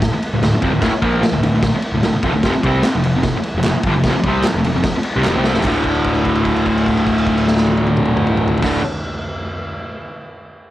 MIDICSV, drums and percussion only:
0, 0, Header, 1, 2, 480
1, 0, Start_track
1, 0, Key_signature, -1, "minor"
1, 0, Tempo, 401875
1, 984, Time_signature, 4, 2, 24, 8
1, 12786, End_track
2, 0, Start_track
2, 0, Title_t, "Drums"
2, 24, Note_on_c, 9, 36, 109
2, 29, Note_on_c, 9, 51, 106
2, 30, Note_on_c, 9, 38, 122
2, 144, Note_off_c, 9, 36, 0
2, 149, Note_off_c, 9, 51, 0
2, 150, Note_off_c, 9, 38, 0
2, 269, Note_on_c, 9, 51, 75
2, 388, Note_off_c, 9, 51, 0
2, 509, Note_on_c, 9, 51, 105
2, 510, Note_on_c, 9, 38, 117
2, 628, Note_off_c, 9, 51, 0
2, 630, Note_off_c, 9, 38, 0
2, 741, Note_on_c, 9, 36, 98
2, 743, Note_on_c, 9, 51, 78
2, 861, Note_off_c, 9, 36, 0
2, 862, Note_off_c, 9, 51, 0
2, 977, Note_on_c, 9, 36, 114
2, 980, Note_on_c, 9, 51, 107
2, 981, Note_on_c, 9, 38, 118
2, 1096, Note_off_c, 9, 36, 0
2, 1099, Note_off_c, 9, 51, 0
2, 1100, Note_off_c, 9, 38, 0
2, 1218, Note_on_c, 9, 51, 77
2, 1220, Note_on_c, 9, 36, 99
2, 1337, Note_off_c, 9, 51, 0
2, 1339, Note_off_c, 9, 36, 0
2, 1468, Note_on_c, 9, 51, 110
2, 1469, Note_on_c, 9, 38, 120
2, 1587, Note_off_c, 9, 51, 0
2, 1588, Note_off_c, 9, 38, 0
2, 1708, Note_on_c, 9, 51, 84
2, 1828, Note_off_c, 9, 51, 0
2, 1940, Note_on_c, 9, 51, 116
2, 1941, Note_on_c, 9, 36, 117
2, 1941, Note_on_c, 9, 38, 113
2, 2059, Note_off_c, 9, 51, 0
2, 2060, Note_off_c, 9, 38, 0
2, 2061, Note_off_c, 9, 36, 0
2, 2175, Note_on_c, 9, 51, 85
2, 2294, Note_off_c, 9, 51, 0
2, 2425, Note_on_c, 9, 51, 103
2, 2427, Note_on_c, 9, 38, 115
2, 2545, Note_off_c, 9, 51, 0
2, 2546, Note_off_c, 9, 38, 0
2, 2661, Note_on_c, 9, 51, 78
2, 2663, Note_on_c, 9, 36, 104
2, 2780, Note_off_c, 9, 51, 0
2, 2782, Note_off_c, 9, 36, 0
2, 2904, Note_on_c, 9, 36, 112
2, 2906, Note_on_c, 9, 51, 104
2, 2907, Note_on_c, 9, 38, 118
2, 3024, Note_off_c, 9, 36, 0
2, 3026, Note_off_c, 9, 51, 0
2, 3027, Note_off_c, 9, 38, 0
2, 3146, Note_on_c, 9, 36, 109
2, 3152, Note_on_c, 9, 51, 77
2, 3265, Note_off_c, 9, 36, 0
2, 3271, Note_off_c, 9, 51, 0
2, 3379, Note_on_c, 9, 51, 106
2, 3380, Note_on_c, 9, 38, 120
2, 3400, Note_on_c, 9, 39, 101
2, 3498, Note_off_c, 9, 51, 0
2, 3500, Note_off_c, 9, 38, 0
2, 3519, Note_off_c, 9, 39, 0
2, 3625, Note_on_c, 9, 51, 77
2, 3745, Note_off_c, 9, 51, 0
2, 3861, Note_on_c, 9, 51, 104
2, 3862, Note_on_c, 9, 38, 118
2, 3864, Note_on_c, 9, 36, 112
2, 3981, Note_off_c, 9, 51, 0
2, 3982, Note_off_c, 9, 38, 0
2, 3984, Note_off_c, 9, 36, 0
2, 4102, Note_on_c, 9, 51, 75
2, 4221, Note_off_c, 9, 51, 0
2, 4342, Note_on_c, 9, 51, 92
2, 4344, Note_on_c, 9, 38, 116
2, 4349, Note_on_c, 9, 39, 105
2, 4462, Note_off_c, 9, 51, 0
2, 4463, Note_off_c, 9, 38, 0
2, 4468, Note_off_c, 9, 39, 0
2, 4577, Note_on_c, 9, 51, 77
2, 4581, Note_on_c, 9, 36, 110
2, 4697, Note_off_c, 9, 51, 0
2, 4701, Note_off_c, 9, 36, 0
2, 4823, Note_on_c, 9, 36, 106
2, 4823, Note_on_c, 9, 51, 106
2, 4824, Note_on_c, 9, 38, 111
2, 4943, Note_off_c, 9, 36, 0
2, 4943, Note_off_c, 9, 51, 0
2, 4944, Note_off_c, 9, 38, 0
2, 5061, Note_on_c, 9, 36, 106
2, 5061, Note_on_c, 9, 51, 73
2, 5181, Note_off_c, 9, 36, 0
2, 5181, Note_off_c, 9, 51, 0
2, 5299, Note_on_c, 9, 51, 108
2, 5300, Note_on_c, 9, 38, 123
2, 5302, Note_on_c, 9, 39, 108
2, 5418, Note_off_c, 9, 51, 0
2, 5419, Note_off_c, 9, 38, 0
2, 5422, Note_off_c, 9, 39, 0
2, 5548, Note_on_c, 9, 51, 89
2, 5667, Note_off_c, 9, 51, 0
2, 5777, Note_on_c, 9, 51, 115
2, 5778, Note_on_c, 9, 36, 114
2, 5779, Note_on_c, 9, 38, 118
2, 5897, Note_off_c, 9, 36, 0
2, 5897, Note_off_c, 9, 51, 0
2, 5898, Note_off_c, 9, 38, 0
2, 6008, Note_on_c, 9, 51, 85
2, 6127, Note_off_c, 9, 51, 0
2, 6256, Note_on_c, 9, 38, 68
2, 6266, Note_on_c, 9, 39, 112
2, 6376, Note_off_c, 9, 38, 0
2, 6386, Note_off_c, 9, 39, 0
2, 6499, Note_on_c, 9, 38, 99
2, 6618, Note_off_c, 9, 38, 0
2, 6618, Note_on_c, 9, 38, 93
2, 6714, Note_on_c, 9, 49, 91
2, 6734, Note_on_c, 9, 36, 101
2, 6738, Note_off_c, 9, 38, 0
2, 6738, Note_on_c, 9, 39, 87
2, 6833, Note_off_c, 9, 49, 0
2, 6854, Note_off_c, 9, 36, 0
2, 6857, Note_off_c, 9, 39, 0
2, 6968, Note_on_c, 9, 49, 46
2, 6977, Note_on_c, 9, 36, 67
2, 7088, Note_off_c, 9, 49, 0
2, 7097, Note_off_c, 9, 36, 0
2, 7101, Note_on_c, 9, 57, 49
2, 7219, Note_on_c, 9, 49, 46
2, 7221, Note_off_c, 9, 57, 0
2, 7223, Note_on_c, 9, 36, 67
2, 7338, Note_off_c, 9, 49, 0
2, 7342, Note_off_c, 9, 36, 0
2, 7346, Note_on_c, 9, 57, 45
2, 7465, Note_off_c, 9, 57, 0
2, 7467, Note_on_c, 9, 36, 68
2, 7470, Note_on_c, 9, 49, 49
2, 7586, Note_off_c, 9, 36, 0
2, 7589, Note_off_c, 9, 49, 0
2, 7590, Note_on_c, 9, 57, 49
2, 7707, Note_on_c, 9, 36, 69
2, 7709, Note_off_c, 9, 57, 0
2, 7710, Note_on_c, 9, 49, 55
2, 7826, Note_off_c, 9, 36, 0
2, 7830, Note_off_c, 9, 49, 0
2, 7839, Note_on_c, 9, 57, 52
2, 7956, Note_on_c, 9, 36, 69
2, 7958, Note_off_c, 9, 57, 0
2, 7967, Note_on_c, 9, 49, 52
2, 8075, Note_off_c, 9, 36, 0
2, 8087, Note_off_c, 9, 49, 0
2, 8092, Note_on_c, 9, 57, 52
2, 8197, Note_on_c, 9, 36, 65
2, 8212, Note_off_c, 9, 57, 0
2, 8216, Note_on_c, 9, 49, 53
2, 8316, Note_off_c, 9, 36, 0
2, 8325, Note_on_c, 9, 57, 52
2, 8335, Note_off_c, 9, 49, 0
2, 8440, Note_on_c, 9, 36, 65
2, 8445, Note_off_c, 9, 57, 0
2, 8454, Note_on_c, 9, 49, 55
2, 8559, Note_off_c, 9, 36, 0
2, 8573, Note_off_c, 9, 49, 0
2, 8576, Note_on_c, 9, 57, 55
2, 8679, Note_on_c, 9, 36, 66
2, 8690, Note_on_c, 9, 49, 52
2, 8695, Note_off_c, 9, 57, 0
2, 8799, Note_off_c, 9, 36, 0
2, 8809, Note_on_c, 9, 57, 60
2, 8810, Note_off_c, 9, 49, 0
2, 8928, Note_off_c, 9, 57, 0
2, 8929, Note_on_c, 9, 38, 90
2, 9042, Note_off_c, 9, 38, 0
2, 9042, Note_on_c, 9, 38, 95
2, 9159, Note_on_c, 9, 48, 97
2, 9162, Note_off_c, 9, 38, 0
2, 9278, Note_off_c, 9, 48, 0
2, 9285, Note_on_c, 9, 48, 95
2, 9397, Note_off_c, 9, 48, 0
2, 9397, Note_on_c, 9, 48, 96
2, 9516, Note_off_c, 9, 48, 0
2, 9518, Note_on_c, 9, 47, 95
2, 9621, Note_off_c, 9, 47, 0
2, 9621, Note_on_c, 9, 47, 103
2, 9741, Note_off_c, 9, 47, 0
2, 9757, Note_on_c, 9, 45, 106
2, 9877, Note_off_c, 9, 45, 0
2, 9877, Note_on_c, 9, 45, 107
2, 9997, Note_off_c, 9, 45, 0
2, 10000, Note_on_c, 9, 45, 102
2, 10120, Note_off_c, 9, 45, 0
2, 10125, Note_on_c, 9, 43, 107
2, 10243, Note_off_c, 9, 43, 0
2, 10243, Note_on_c, 9, 43, 108
2, 10302, Note_on_c, 9, 36, 117
2, 10315, Note_on_c, 9, 49, 109
2, 10317, Note_on_c, 9, 38, 105
2, 10362, Note_off_c, 9, 43, 0
2, 10421, Note_off_c, 9, 36, 0
2, 10435, Note_off_c, 9, 49, 0
2, 10436, Note_off_c, 9, 38, 0
2, 12786, End_track
0, 0, End_of_file